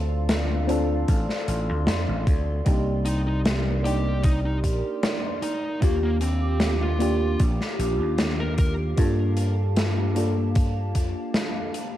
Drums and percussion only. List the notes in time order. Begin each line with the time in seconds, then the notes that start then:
0.29 snare, closed hi-hat
0.69 closed hi-hat
1.08 kick, closed hi-hat
1.29 snare
1.48 closed hi-hat
1.87 snare, closed hi-hat
2.27 kick, closed hi-hat
2.66 kick, closed hi-hat
3.06 closed hi-hat
3.45 snare, closed hi-hat
3.85 closed hi-hat
4.24 kick, closed hi-hat
4.64 kick, closed hi-hat
5.03 snare, closed hi-hat
5.42 closed hi-hat
5.82 kick, closed hi-hat
6.21 closed hi-hat
6.60 snare, closed hi-hat
7.00 closed hi-hat
7.40 kick, closed hi-hat
7.61 snare
7.80 closed hi-hat
8.18 snare, closed hi-hat
8.58 kick, closed hi-hat
8.97 kick, closed hi-hat
9.37 closed hi-hat
9.76 snare, closed hi-hat
10.16 closed hi-hat
10.55 kick, closed hi-hat
10.95 kick, closed hi-hat
11.34 snare, closed hi-hat
11.74 closed hi-hat